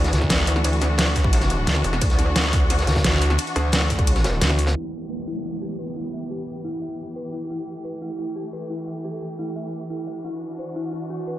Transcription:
Already playing: wobble bass D2, string section E3 D4 F#4
0.04 snare, closed hi-hat
0.12 fm bass D2, snare, closed hi-hat
0.22 kick, snare
0.30 wobble bass D2, snare, closed hi-hat, ride bell
0.40 snare
0.47 closed hi-hat, open hi-hat
0.56 snare
0.64 closed hi-hat, ride bell
0.73 closed hi-hat
0.81 snare, closed hi-hat
0.98 snare, closed hi-hat, ride bell
1.07 snare
1.15 kick, closed hi-hat, open hi-hat
1.24 kick
1.33 closed hi-hat, ride bell
1.41 snare, closed hi-hat
1.50 closed hi-hat
1.67 fm bass D2, snare, closed hi-hat, ride bell
1.76 snare
1.84 wobble bass E1, closed hi-hat, open hi-hat
1.93 snare
2.01 wobble bass D2, kick, closed hi-hat, ride bell
2.10 snare, closed hi-hat
2.19 snare, closed hi-hat
2.35 snare, closed hi-hat, ride bell
2.45 snare
2.53 kick, closed hi-hat, open hi-hat
2.70 snare, closed hi-hat, ride bell
2.79 snare, closed hi-hat
2.87 fm bass D2, snare, closed hi-hat
2.96 kick, snare, closed hi-hat
3.04 fm bass D2, snare, closed hi-hat, ride bell
3.13 snare
3.22 closed hi-hat, open hi-hat
3.30 snare
3.38 closed hi-hat, ride bell
3.47 closed hi-hat
3.56 wobble bass D2, snare, closed hi-hat
3.72 snare, closed hi-hat, ride bell
3.82 snare
3.90 kick, closed hi-hat, open hi-hat
3.99 kick, closed hi-hat
4.07 closed hi-hat, ride bell
4.16 snare, closed hi-hat
4.24 snare, closed hi-hat
4.41 fm bass D2, snare, closed hi-hat, ride bell
4.50 snare
4.59 closed hi-hat, open hi-hat
4.67 snare, closed hi-hat
4.76 string section E3 B3 G4, synth bell E4, closed hi-hat, downlifter
4.93 closed hi-hat
5.10 synth bell B4, closed hi-hat
5.27 synth bell E4, closed hi-hat
5.44 synth bell E4, closed hi-hat
5.53 closed hi-hat
5.62 synth bell G4, closed hi-hat
5.79 synth bell B4, closed hi-hat
5.96 synth bell E4, closed hi-hat
6.13 synth bell E5, closed hi-hat
6.30 synth bell G4, closed hi-hat
6.47 closed hi-hat
6.64 synth bell E4, closed hi-hat
6.82 synth bell E5, closed hi-hat
6.90 closed hi-hat
6.99 closed hi-hat
7.16 synth bell B4, closed hi-hat
7.33 synth bell E4, closed hi-hat
7.50 string section A3, synth bell E4, closed hi-hat
7.59 closed hi-hat
7.67 closed hi-hat
7.84 synth bell B4, closed hi-hat
8.02 synth bell E4, closed hi-hat
8.19 synth bell E4, closed hi-hat
8.27 closed hi-hat
8.36 synth bell G4, closed hi-hat
8.53 synth bell B4, closed hi-hat
8.70 synth bell E4, closed hi-hat
8.87 synth bell E5, closed hi-hat
8.96 closed hi-hat
9.04 synth bell G4, closed hi-hat
9.21 closed hi-hat
9.39 synth bell E4, closed hi-hat
9.56 synth bell E5, closed hi-hat
9.64 closed hi-hat
9.73 closed hi-hat
9.90 synth bell E4, closed hi-hat
10.07 synth bell E5, closed hi-hat
10.24 string section D4 F#4, synth bell E4, closed hi-hat
10.33 closed hi-hat
10.42 closed hi-hat
10.59 synth bell C5, closed hi-hat
10.76 synth bell E4, closed hi-hat
10.93 synth bell E4, closed hi-hat
11.02 closed hi-hat
11.10 synth bell F#4, closed hi-hat
11.27 synth bell B4, closed hi-hat

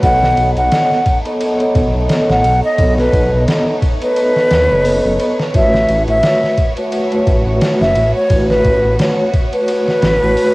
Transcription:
0.02 detuned saw bass B1, violin section A3 D#4 C#5, vibraphone B3 A4 C#5 D#5, flute F#5, kick, ride
0.23 snare
0.37 detuned saw bass B1, ride
0.56 detuned saw bass B1, flute F#5, ride
0.72 vibraphone B3 A4 C#5 D#5, snare, ride
0.91 snare
1.06 kick, ride
1.25 vibraphone B3 A4 C#5 D#5, ride
1.41 ride
1.59 vibraphone B3 A4 C#5 D#5, ride
1.75 detuned saw bass B1, kick, ride
1.95 detuned saw bass B1
2.09 snare, ride
2.29 detuned saw bass A1, flute F#5, snare
2.44 detuned saw bass B1, ride
2.64 flute D#5
2.78 detuned saw bass B1, vibraphone B3 A4 C#5 D#5, kick, ride
2.98 flute B4, snare
3.13 detuned saw bass B1, kick, ride
3.33 detuned saw bass B1
3.48 vibraphone B3 A4 C#5 D#5, snare, ride
3.82 kick, ride
4.02 vibraphone B3 A4 C#5 D#5, flute B4, ride
4.16 ride
4.36 snare
4.51 detuned saw bass D#2, snare, ride
4.70 detuned saw bass F#1, vibraphone B3 A4 C#5 D#5
4.85 open hi-hat
5.05 detuned saw bass F#1
5.20 vibraphone B3 A4 C#5 D#5, ride
5.39 snare
5.54 detuned saw bass A1, vibraphone A3 F#4 B4 C#5, violin section B3 F#4, flute E5, kick, ride
5.74 snare
5.89 detuned saw bass A1, ride
6.08 detuned saw bass A1, flute E5, ride
6.23 vibraphone A3 F#4 B4 C#5, snare, ride
6.43 snare
6.57 kick, ride
6.77 vibraphone A3 F#4 B4 C#5, ride
6.92 ride
7.12 vibraphone A3 F#4 B4 C#5, ride
7.27 detuned saw bass A1, kick, ride
7.46 detuned saw bass A1
7.61 snare, ride
7.81 detuned saw bass F#1, flute E5, snare
7.95 detuned saw bass A1, ride
8.15 flute C#5
8.30 detuned saw bass A1, vibraphone A3 F#4 B4 C#5, kick, ride
8.49 flute B4, snare
8.65 detuned saw bass A1, kick, ride
8.84 detuned saw bass A1
8.99 vibraphone A3 F#4 B4 C#5, snare, ride
9.33 kick, ride
9.53 vibraphone A3 F#4 B4 C#5, flute B4, ride
9.68 ride
9.88 snare
10.02 detuned saw bass A1, snare, ride
10.22 detuned saw bass A1, vibraphone A3 F#4 B4 C#5
10.37 open hi-hat

